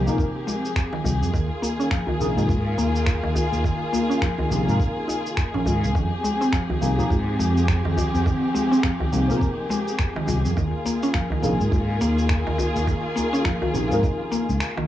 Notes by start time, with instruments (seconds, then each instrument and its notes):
Already playing: synth pluck D#3, string section F3 C4 G4 G#4
0.04 fretless electric bass A#2, synth stab C3 F3 A#3 D#4, djembe tone, cabasa
0.08 synth stab A#4
0.18 kick, cabasa
0.47 synth pluck G#3, djembe slap, cabasa
0.65 cabasa
0.76 finger snap, kick, cabasa
0.93 synth pluck D#3, djembe slap
1.04 fretless electric bass C2, synth pluck D#3, djembe slap, djembe bass, cabasa
1.22 fretless electric bass F2, djembe tone, cabasa
1.34 fretless electric bass D#2, synth pluck D#3, string section D#3 A#3 F4, kick, cabasa
1.62 synth pluck A#3, djembe tone, cabasa
1.80 synth pluck C#4, cabasa
1.91 synth pluck F3, finger snap, kick, cabasa
2.07 synth pluck D#3, djembe tone, djembe bass
2.19 fretless electric bass A#1, synth stab C3 F3 A#3 D#4 G#4, djembe slap, cabasa
2.36 fretless electric bass G#2, synth stab C3 F3 A#3 D#4 G#4, djembe tone, cabasa
2.49 fretless electric bass G#2, kick, djembe bass, cabasa
2.78 fretless electric bass D#2, synth pluck A#3, djembe slap, cabasa
2.96 cabasa
3.06 finger snap, kick, cabasa
3.23 fretless electric bass D#2, synth pluck D#3, djembe slap
3.35 synth pluck D#3, djembe bass, cabasa
3.52 fretless electric bass D#2, cabasa
3.64 synth pluck D#3, kick, cabasa
3.93 synth pluck A#3, djembe tone, cabasa
4.10 synth pluck C#4, cabasa
4.22 synth pluck F3, finger snap, kick, cabasa
4.38 synth pluck D#3, djembe tone, djembe bass
4.50 fretless electric bass A#1, synth stab C3 F3 A#3 D#4 G4, djembe slap, cabasa
4.66 fretless electric bass G#2, synth stab C3 F3 A#3 D#4, djembe tone, cabasa
4.70 synth stab A#4
4.80 kick, cabasa
5.08 synth pluck D#4, djembe slap, cabasa
5.26 cabasa
5.37 finger snap, kick, cabasa
5.54 fretless electric bass A#1, synth pluck C#4, djembe slap, djembe tone
5.66 fretless electric bass G#2, synth pluck D#3, djembe slap, djembe bass, cabasa
5.83 fretless electric bass C#2, djembe tone, cabasa
5.95 fretless electric bass F2, synth pluck D#3, string section F3 C4 G4, kick, cabasa
6.24 synth pluck G#3, djembe tone, cabasa
6.41 synth pluck C4, cabasa
6.53 synth pluck F3, finger snap, kick, cabasa
6.69 synth pluck D#3, djembe tone, djembe bass
6.80 fretless electric bass C2, synth stab C3 F3 A#3 D#4 G#4, djembe slap, cabasa
6.97 fretless electric bass A#2, synth stab C3 F3 A#3 D#4 G#4, djembe tone, cabasa
7.10 fretless electric bass G#2, kick, djembe bass, cabasa
7.39 fretless electric bass F2, synth pluck G#3, djembe slap, cabasa
7.57 cabasa
7.68 finger snap, kick, cabasa
7.85 fretless electric bass F2, synth pluck D#3, djembe slap
7.97 synth pluck D#3, djembe bass, cabasa
8.14 fretless electric bass F2, cabasa
8.26 synth pluck D#3, kick, cabasa
8.54 synth pluck G#3, djembe tone, cabasa
8.72 synth pluck C4, cabasa
8.83 synth pluck F3, finger snap, kick, cabasa
9.00 synth pluck D#3, djembe tone, djembe bass
9.11 fretless electric bass C2, synth stab C3 F3 A#3 D#4 G4, djembe slap, cabasa
9.27 fretless electric bass A#2, synth stab C3 F3 A#3 D#4 A#4, djembe tone, cabasa
9.41 kick, cabasa
9.69 synth pluck G#3, djembe slap, cabasa
9.88 cabasa
9.99 finger snap, kick, cabasa
10.16 synth pluck D#3, djembe slap
10.26 fretless electric bass C2, synth pluck D#3, djembe slap, djembe bass, cabasa
10.45 fretless electric bass F2, djembe tone, cabasa
10.56 fretless electric bass D#2, string section D#3 A#3 F4 G#4, synth pluck D#3, kick, cabasa
10.85 synth pluck A#3, djembe tone, cabasa
11.03 synth pluck C#4, cabasa
11.14 synth pluck F3, finger snap, kick, cabasa
11.30 synth pluck D#3, djembe tone, djembe bass
11.42 fretless electric bass A#1, synth stab C3 F3 A#3 D#4 G#4, djembe slap, cabasa
11.60 fretless electric bass G#2, djembe tone, cabasa
11.72 fretless electric bass G#2, kick, djembe bass, cabasa
12.01 fretless electric bass D#2, synth pluck A#3, djembe slap, cabasa
12.18 cabasa
12.29 finger snap, kick, cabasa
12.47 fretless electric bass D#2, synth pluck D#3, djembe slap
12.58 synth pluck D#3, djembe bass, cabasa
12.76 fretless electric bass D#2, cabasa
12.87 synth pluck D#3, kick, cabasa
13.16 synth pluck A#3, djembe tone, cabasa
13.33 synth pluck C#4, cabasa
13.45 synth pluck F3, finger snap, kick, cabasa
13.62 synth pluck D#3, djembe tone, djembe bass
13.73 fretless electric bass A#1, synth stab C3 F3 A#3 D#4 G4, djembe slap, cabasa
13.89 fretless electric bass G#2, synth stab C3 F3 A#3 D#4, djembe tone, cabasa
13.93 synth stab A#4
14.03 kick, cabasa
14.31 synth pluck A#3, djembe slap, cabasa
14.49 fretless electric bass C#2, cabasa
14.60 finger snap, cabasa
14.77 synth pluck D#3, djembe slap, djembe tone